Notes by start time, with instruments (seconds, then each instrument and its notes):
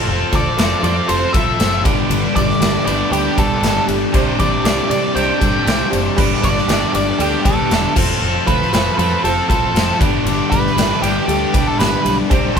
Already playing: overdriven electric guitar F3 C4 F4 A4, tonewheel organ A3 C4 F4 C5, honky-tonk piano F4 A4 C5
0.06 fingered electric bass F1, overdriven electric guitar F3 C4 F4 A4, tambourine
0.31 fingered electric bass D2, overdriven electric guitar C4 F4 A4, honky-tonk piano F4 A4 C5, lead electric guitar D5, kick, ride
0.57 fingered electric bass F1, overdriven electric guitar F3 C4 F4 A4, honky-tonk piano F4 A4 B4, snare, ride, tambourine
0.82 fingered electric bass F2, overdriven electric guitar F3 C4 F4 A4, honky-tonk piano F4 A4 C5, lead electric guitar D5, ride, tambourine
1.08 fingered electric bass F1, honky-tonk piano F4 A4 C5, lead electric guitar C5, ride, tambourine
1.33 fingered electric bass C2, overdriven electric guitar C4 F4 A4, honky-tonk piano F4 A4 B4, lead electric guitar E5, kick, ride, tambourine
1.59 fingered electric bass F#1, overdriven electric guitar F3 C4 F4 A4, honky-tonk piano F4 A4 C5, snare, ride, tambourine
1.84 fingered electric bass G1, overdriven electric guitar G2 D3 G3 B3 D4 G4, tonewheel organ G3 B3 D4 B4, honky-tonk piano D4 G4 B4, kick, ride, tambourine
2.09 fingered electric bass G1, overdriven electric guitar G2 D3 G3 B3 D4 G4, ride, tambourine
2.35 fingered electric bass G1, overdriven electric guitar G3 B3 D4 G4, honky-tonk piano D4 G4 A4, lead electric guitar D5, kick, ride, tambourine
2.50 snare
2.60 fingered electric bass G1, overdriven electric guitar G3 B3 D4, honky-tonk piano D4 G4 B4, snare, ride, tambourine
2.64 overdriven electric guitar G4
2.85 fingered electric bass G1, overdriven electric guitar D3 D4 G4, honky-tonk piano D4 G4 B4, lead electric guitar D5, ride, tambourine
2.89 overdriven electric guitar G2 G3 B3
3.11 fingered electric bass D2, honky-tonk piano D4 G4 B4, lead electric guitar G4, ride, tambourine
3.36 fingered electric bass C2, overdriven electric guitar G3 B3 D4 G4, honky-tonk piano D4 G4 B4, lead electric guitar A4, kick, ride, tambourine
3.61 fingered electric bass G1, overdriven electric guitar G2 D3 G3 B3 D4, honky-tonk piano D4 G4 B4, snare, ride, tambourine
3.66 overdriven electric guitar G4
3.87 fingered electric bass G1, honky-tonk piano D4 G4 A4, ride, tambourine
4.13 fingered electric bass C2, overdriven electric guitar C3 G3 C4 D4 G4, tonewheel organ G3 C4 D4 C5, honky-tonk piano D4 G4 C5, kick, ride, tambourine
4.38 fingered electric bass A1, honky-tonk piano D4 G4 B4, overdriven electric guitar D4 G4, lead electric guitar D5, kick, ride
4.42 overdriven electric guitar C4
4.64 fingered electric bass C2, overdriven electric guitar G3 C4 D4 G4, honky-tonk piano D4 G4 A4, lead electric guitar D5, snare, ride, tambourine
4.89 fingered electric bass C3, overdriven electric guitar C4 D4 G4, honky-tonk piano D4 G4 D5, lead electric guitar D5, ride, tambourine
5.14 fingered electric bass C2, overdriven electric guitar C3 G3 C4 D4, honky-tonk piano D4 G4 C5, lead electric guitar G5, ride, tambourine
5.18 overdriven electric guitar G4
5.39 fingered electric bass G2, honky-tonk piano D4 G4 A4, overdriven electric guitar D4 G4, kick, ride, tambourine
5.43 overdriven electric guitar C4
5.65 fingered electric bass C2, overdriven electric guitar C3 G3 C4 D4 G4, honky-tonk piano D4 G4 C5, snare, ride, tambourine
5.90 fingered electric bass F#1, honky-tonk piano D4 G4 C5, ride, tambourine
6.16 fingered electric bass G1, overdriven electric guitar G2 D3 G3 B3 D4, tonewheel organ C4 D#4 C5, honky-tonk piano D4 G4 B4, kick, crash
6.20 tonewheel organ G#3, overdriven electric guitar G4
6.34 tonewheel organ G3 B3 D4 B4
6.41 fingered electric bass G1, overdriven electric guitar B3 D4 G4, honky-tonk piano D4 G4 B4, lead electric guitar D5, kick, ride
6.45 overdriven electric guitar G3
6.58 snare
6.68 fingered electric bass G1, overdriven electric guitar G3 B3 D4 G4, honky-tonk piano D4 G4 D5, snare, ride, tambourine
6.93 fingered electric bass G1, overdriven electric guitar G3 B3 D4 G4, honky-tonk piano D4 G4 D5, lead electric guitar D5, ride, tambourine
7.18 fingered electric bass D2, overdriven electric guitar G2 D3 G3 B3 D4 G4, honky-tonk piano D4 G4 A4, lead electric guitar G4, ride, tambourine
7.45 fingered electric bass C2, overdriven electric guitar G3 B3 D4 G4, honky-tonk piano D4 G4 B4, lead electric guitar A4, kick, ride, tambourine
7.69 fingered electric bass E1, overdriven electric guitar G2 D3 G3 B3 D4 G4, honky-tonk piano D4 G4 B4, snare, ride, tambourine
7.95 fingered electric bass F1, overdriven electric guitar F3 C4 F4 A4, tonewheel organ A3 C4 F4 C5, honky-tonk piano F4 A4 C5, kick, tambourine, crash
8.21 fingered electric bass F1, overdriven electric guitar F3 C4 F4 A4, tambourine
8.46 fingered electric bass D2, overdriven electric guitar C4 F4 A4, honky-tonk piano F4 A4 C5, lead electric guitar B4, kick, ride, tambourine
8.62 snare
8.72 fingered electric bass F1, overdriven electric guitar F3 C4 F4 A4, honky-tonk piano F4 A4 C5, lead electric guitar B4, snare, ride, tambourine
8.97 fingered electric bass F2, overdriven electric guitar C4 F4 A4, honky-tonk piano F4 A4 C5, lead electric guitar B4, ride, tambourine
9.01 overdriven electric guitar F3
9.24 fingered electric bass F1, honky-tonk piano F4 A4 C5, lead electric guitar A4, ride, tambourine
9.48 fingered electric bass C2, overdriven electric guitar C4 F4 A4, honky-tonk piano F4 A4 B4, lead electric guitar A4, kick, ride, tambourine
9.74 fingered electric bass F1, overdriven electric guitar F3 C4 F4 A4, honky-tonk piano F4 A4 C5, snare, ride, tambourine
10.00 fingered electric bass G1, overdriven electric guitar G2 D3 G3 B3 D4 G4, tonewheel organ G3 B3 D4 B4, honky-tonk piano D4 G4 B4, kick, ride, tambourine
10.25 fingered electric bass G1, overdriven electric guitar G2 D3 G3 B3 D4 G4, ride, tambourine
10.51 fingered electric bass G1, overdriven electric guitar G3 B3 D4 G4, honky-tonk piano D4 G4 B4, lead electric guitar B4, kick, ride, tambourine
10.66 snare
10.75 fingered electric bass G1, overdriven electric guitar G3 B3 D4 G4, honky-tonk piano D4 G4 D5, snare, ride, tambourine
11.01 fingered electric bass G1, overdriven electric guitar G3 B3 D4 G4, honky-tonk piano D4 G4 B4, lead electric guitar G4, ride, tambourine
11.05 overdriven electric guitar G2 D3
11.28 fingered electric bass D2, honky-tonk piano D4 G4 A4, ride, tambourine
11.53 fingered electric bass C2, overdriven electric guitar G3 B3 D4 G4, honky-tonk piano D4 G4 B4, kick, ride, tambourine
11.67 lead electric guitar A4
11.78 fingered electric bass G1, overdriven electric guitar G2 D3 G3 B3 D4 G4, honky-tonk piano D4 G4 B4, lead electric guitar B4, snare, ride, tambourine
12.04 fingered electric bass B1, honky-tonk piano D4 G4 B4, ride, tambourine
12.29 fingered electric bass C2, overdriven electric guitar C3 G3 C4 D4 G4, tonewheel organ G3 C4 D4 C5, honky-tonk piano D4 G4 C5, kick, ride, tambourine
12.55 fingered electric bass A1, honky-tonk piano D4 G4 C5, overdriven electric guitar G4